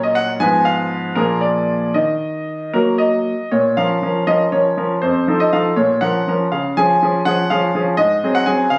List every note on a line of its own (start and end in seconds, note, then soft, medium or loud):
0.00 0.38 A#2 soft
0.00 0.36 F#3 soft
0.00 0.37 C#4 soft
0.00 0.37 A#4 soft
0.00 0.16 D#5 medium
0.15 0.30 F#5 medium
0.40 1.14 G#2 soft
0.40 1.12 F3 soft
0.40 1.12 B3 soft
0.40 1.13 B4 soft
0.40 0.63 G#5 medium
0.65 1.16 F5 medium
1.15 1.93 A#2 soft
1.15 1.91 F3 soft
1.15 1.92 A#3 soft
1.15 1.92 G#4 soft
1.15 1.39 A#4 medium
1.41 1.95 D5 soft
1.94 2.71 D#3 soft
1.94 2.70 D#5 soft
2.73 3.30 F#3 soft
2.73 3.31 A#3 soft
2.73 3.31 F#4 soft
2.73 3.00 A#4 medium
2.98 3.52 D#5 medium
3.51 3.77 A#2 soft
3.51 3.75 C#5 medium
3.77 3.96 F3 soft
3.77 3.96 C#4 soft
3.77 3.96 A#4 soft
3.77 4.28 F5 medium
4.02 4.21 F3 soft
4.02 4.21 C#4 soft
4.02 4.21 A#4 soft
4.27 4.46 F3 soft
4.27 4.46 C#4 soft
4.27 4.46 A#4 soft
4.27 4.42 D#5 medium
4.52 4.71 F3 soft
4.52 4.71 C#4 soft
4.52 4.71 A#4 soft
4.52 4.82 C#5 medium
4.77 4.96 F3 soft
4.77 4.96 C#4 soft
4.77 4.96 A#4 soft
5.02 5.27 F2 soft
5.02 5.40 C5 medium
5.28 5.46 F3 soft
5.28 5.46 D#4 soft
5.28 5.46 A4 soft
5.40 5.53 D#5 medium
5.53 5.71 F3 soft
5.53 5.71 D#4 soft
5.53 5.71 A4 soft
5.53 5.75 F5 medium
5.76 6.01 A#2 soft
5.76 6.02 C#5 medium
6.01 6.20 F3 soft
6.01 6.20 C#4 soft
6.01 6.20 A#4 soft
6.01 6.31 F#5 medium
6.28 6.46 F3 soft
6.28 6.46 C#4 soft
6.28 6.46 A#4 soft
6.52 6.76 C#3 soft
6.52 6.77 F5 medium
6.77 6.95 F3 soft
6.77 6.95 C#4 soft
6.77 6.96 G#4 soft
6.77 7.22 G#5 medium
7.02 7.20 F3 soft
7.02 7.20 C#4 soft
7.02 7.20 G#4 soft
7.25 7.44 F3 soft
7.25 7.44 C#4 soft
7.25 7.44 G#4 soft
7.25 7.50 F#5 medium
7.50 7.68 F3 soft
7.50 7.69 C#4 soft
7.50 7.69 G#4 soft
7.50 7.80 F5 medium
7.75 7.92 F3 soft
7.75 7.93 C#4 soft
7.75 7.93 G#4 soft
7.97 8.22 G#2 soft
7.97 8.35 D#5 medium
8.24 8.41 F#3 soft
8.24 8.41 C4 soft
8.24 8.42 G#4 soft
8.35 8.48 F#5 medium
8.46 8.65 F#3 soft
8.46 8.65 C4 soft
8.46 8.65 G#4 soft
8.46 8.69 G#5 medium
8.70 8.79 C#3 soft
8.70 8.79 F5 medium